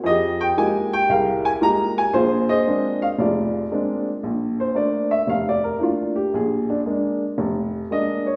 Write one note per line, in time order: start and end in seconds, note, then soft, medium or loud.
0.04 0.50 F2 medium
0.04 0.57 G4 medium
0.04 0.42 D#5 medium
0.08 1.07 G#4 medium
0.41 0.46 G5 medium
0.57 0.94 G#3 medium
0.57 0.94 A#3 soft
0.57 0.94 D#4 medium
0.57 0.94 F4 soft
0.57 0.95 G4 medium
0.57 0.94 G#5 medium
0.93 1.10 G5 medium
1.09 1.55 C2 medium
1.09 2.11 G#4 medium
1.09 2.11 A#4 medium
1.09 1.43 F5 medium
1.45 1.50 G#5 medium
1.61 1.98 G#3 medium
1.61 1.98 A#3 soft
1.61 1.98 D#4 soft
1.61 1.98 F4 soft
1.61 1.99 G4 medium
1.61 1.99 A#5 loud
1.98 2.13 G#5 medium
2.13 2.59 A#1 medium
2.13 3.15 F4 medium
2.13 2.49 G#4 medium
2.13 2.48 C5 medium
2.49 3.19 G#4 medium
2.49 3.50 C5 medium
2.49 2.98 D#5 medium
2.67 3.03 G#3 medium
2.67 3.04 A#3 soft
2.67 3.04 C4 soft
2.67 3.04 D4 medium
3.02 3.07 F5 medium
3.19 3.64 F1 medium
3.19 4.20 F4 soft
3.19 4.20 G#4 soft
3.19 4.03 D5 medium
3.71 4.08 G#3 medium
3.71 4.08 A#3 soft
3.71 4.08 C4 soft
3.71 4.09 D4 medium
4.23 4.69 A#1 medium
4.60 4.76 C5 medium
4.75 5.12 A3 medium
4.75 5.12 A#3 soft
4.75 5.12 D4 medium
4.75 5.10 D5 medium
5.11 5.28 E5 medium
5.27 5.73 F1 medium
5.27 5.46 F5 medium
5.49 5.64 D5 medium
5.64 5.80 A#4 medium
5.79 6.17 A3 soft
5.79 6.17 A#3 soft
5.79 6.17 D4 medium
5.79 5.82 E4 soft
5.83 6.16 F4 medium
6.16 6.32 G4 medium
6.34 6.79 A#1 medium
6.34 6.68 G#4 medium
6.70 6.79 D4 medium
6.86 7.22 G#3 medium
6.86 7.22 A#3 medium
6.86 7.23 D4 medium
7.38 7.83 F1 medium
7.91 8.27 G#3 soft
7.91 8.27 A#3 soft
7.91 8.28 D4 medium
7.91 8.25 D#5 medium
8.26 8.36 C#5 medium